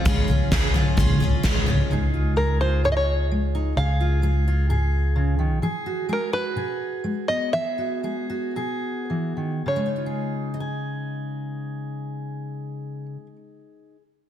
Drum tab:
SD |--o---o-|--------|--------|--------|
FT |oo-ooo-o|--------|--------|--------|
BD |o-o-o-o-|--------|--------|--------|

SD |--------|--------|--------|
FT |--------|--------|--------|
BD |--------|--------|--------|